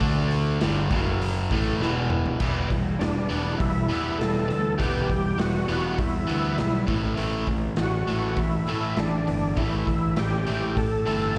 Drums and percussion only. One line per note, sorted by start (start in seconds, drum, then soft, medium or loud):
0.00 kick loud
0.00 open hi-hat medium
0.31 open hi-hat medium
0.61 snare loud
0.61 open hi-hat medium
0.90 kick loud
0.90 open hi-hat medium
1.22 open hi-hat medium
1.51 kick loud
1.51 open hi-hat medium
1.82 snare medium
2.10 mid tom medium
2.26 floor tom medium
2.40 kick loud
2.40 crash medium
2.70 kick medium
2.70 open hi-hat soft
3.01 snare loud
3.01 open hi-hat medium
3.30 open hi-hat soft
3.60 kick loud
3.60 open hi-hat medium
3.91 open hi-hat soft
4.21 snare loud
4.21 open hi-hat medium
4.50 open hi-hat soft
4.80 kick loud
4.80 open hi-hat medium
5.10 kick medium
5.10 open hi-hat soft
5.39 snare loud
5.39 open hi-hat medium
5.69 open hi-hat soft
5.98 kick loud
5.98 open hi-hat medium
6.29 open hi-hat soft
6.58 snare medium
6.58 open hi-hat medium
6.88 kick medium
6.88 open hi-hat soft
7.17 open hi-hat medium
7.47 kick medium
7.47 open hi-hat soft
7.76 snare loud
7.76 open hi-hat medium
8.08 open hi-hat soft
8.36 kick loud
8.36 open hi-hat medium
8.67 open hi-hat soft
8.97 snare loud
8.97 open hi-hat medium
9.27 open hi-hat soft
9.57 kick loud
9.57 open hi-hat medium
9.87 kick medium
9.87 open hi-hat soft
10.16 snare loud
10.16 open hi-hat medium
10.47 open hi-hat medium
10.77 kick loud
10.77 open hi-hat medium
11.07 open hi-hat soft